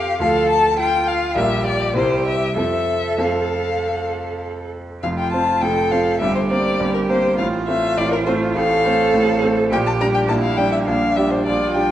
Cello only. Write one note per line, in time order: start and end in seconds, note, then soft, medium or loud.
0.00 0.21 G4 medium
0.21 0.78 A4 medium
0.79 1.39 F4 medium
1.37 1.96 G4 medium
1.97 2.57 G4 medium
2.59 4.69 A4 medium
5.04 5.65 F4 medium
5.63 6.21 A4 medium
6.22 7.36 G4 medium
7.38 8.58 F4 medium
8.56 9.71 A4 medium
9.72 10.31 G4 medium
10.30 10.88 E4 medium
10.87 11.46 D4 medium
11.46 11.91 F4 medium